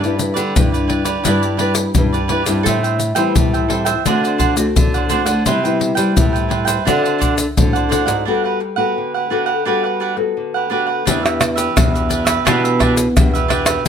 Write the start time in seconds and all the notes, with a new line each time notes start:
Already playing: G2 G3
0.02 D4 E4 G4 B4 D5, pandeiro, shaker
0.19 D4 E4 B4, muted cavaquinho stroke, pandeiro, shaker
0.34 D3 G4 B4 D5, pandeiro, shaker
0.56 G2 D3 D4 E4 B4, pandeiro, shaker, surdo
0.72 G4 B4 D5, pandeiro, shaker
0.87 E4 G4 B4 D5, pandeiro
1.04 G4 B4 D5, pandeiro, shaker
1.23 G2 G3 D4 E4 G4 B4 D5, pandeiro, shaker, surdo
1.28 B4
1.42 G4 B4 D5, pandeiro, shaker
1.57 D4 E4 G4 B4 D5, pandeiro
1.74 muted cavaquinho stroke, pandeiro, shaker
1.95 G2 G3 D4 E4 B4, pandeiro, shaker, surdo
2.12 G4 B4 D5, pandeiro, shaker
2.28 D4 E4 G4 B4 D5, pandeiro
2.44 G2 G3 C4 E4 G4 B4 D5, pandeiro, shaker
2.63 A2 A4 C5 E5 G5, pandeiro, shaker, surdo
2.83 C5 E5 G5, pandeiro, shaker
2.99 muted cavaquinho stroke, pandeiro, shaker
3.15 E3 G3 C4 E4 C5 E5 G5, pandeiro, shaker
3.35 A2 E3, pandeiro, shaker, surdo
3.53 C5 E5 G5, pandeiro, shaker
3.68 G3 C4 E4 A4 C5 E5 G5, pandeiro
3.85 C5 E5 G5, pandeiro, shaker
4.05 D3 A3 C4 D4 F#4 C5 D5 F#5, pandeiro, shaker, surdo
4.23 C5 D5 F#5, pandeiro, shaker
4.38 D4 C5 D5 F#5, pandeiro, shaker, surdo
4.55 A3 C4 F#4, muted cavaquinho stroke, pandeiro, shaker
4.76 A2 D3, pandeiro, shaker, surdo
4.94 C5 D5 F#5, pandeiro, shaker
5.09 A3 C4 D4 F#4 C5 D5 F#5, pandeiro, shaker
5.26 D3 C5 D5 F#5, pandeiro, shaker
5.45 C3 G3 B3 E4 B4 C5 G5, pandeiro, shaker, surdo
5.64 G3 B3 E4 B4 C5 G5, pandeiro, shaker
5.79 muted cavaquinho stroke, pandeiro
5.95 G3 B4 C5 G5, pandeiro, shaker
6.16 G2 A2 G3 B3 E4, pandeiro, shaker, surdo
6.33 B4 C5 G5, pandeiro, shaker
6.49 E4 B4 C5 G5, pandeiro
6.65 B4 C5 G5, pandeiro, shaker
6.85 D3 C4 D4 F#4 A4 C5 D5 F#5, pandeiro, shaker, surdo
7.03 C5 D5 F#5, pandeiro, shaker
7.19 D4 C5 D5 F#5, pandeiro, shaker, surdo
7.35 muted cavaquinho stroke, pandeiro, shaker
7.57 A2 D3 C4 F#4 A4, pandeiro, shaker, surdo
7.73 C5 D5 F#5, pandeiro, shaker
7.89 C4 D4 F#4 A4 C5 D5 F#5, pandeiro, shaker
8.06 G#2 C5 D5 F#5, pandeiro, shaker
8.25 G3 B3 D4 F#4 G4 A4 B4 F#5
8.44 G4 B4 F#5
8.60 muted cavaquinho stroke
8.76 B3 F#4 G4 A4 B4 F#5
8.98 D3
9.14 G4 B4 F#5
9.30 B3 D4 F#4 G4 A4 B4 F#5
9.46 G4 B4 F#5
9.65 G3 B3 D4 F#4 G4 A4 B4 F#5
9.84 G4 B4 F#5
10.00 D4 G4 B4 F#5
10.17 B3 F#4 A4, muted cavaquinho stroke
10.37 D3
10.54 G4 B4 F#5
10.70 B3 D4 F#4 G4 A4 B4 F#5
10.87 G4 B4 F#5
11.05 E2 E3 B3 D4 G4 B4 E5, pandeiro, shaker, surdo
11.23 B3 D4 G4 B4 E5, pandeiro, tamborim, shaker
11.40 muted cavaquinho stroke, pandeiro, tamborim, shaker
11.56 G4 B4 E5, pandeiro, shaker
11.76 E2 B2 B3 D4 G4, pandeiro, tamborim, shaker, surdo
11.94 G4 B4 E5, pandeiro, shaker
12.09 D4 G4 B4 E5, pandeiro, shaker
12.25 G4 B4 E5, pandeiro, tamborim, shaker
12.45 B2 E3 B3 D4 G4 B4 E5, pandeiro, tamborim, shaker, surdo
12.64 G4 B4 E5, pandeiro, shaker
12.79 D4 G4 B4 E5, pandeiro, tamborim, surdo
12.96 muted cavaquinho stroke, pandeiro, shaker
13.16 E2 B2 B3 D4 G4, pandeiro, tamborim, shaker, surdo
13.34 G4 B4 E5, pandeiro, shaker
13.48 B3 D4 G4 B4 E5, pandeiro, tamborim
13.66 G4 B4 E5, pandeiro, tamborim, shaker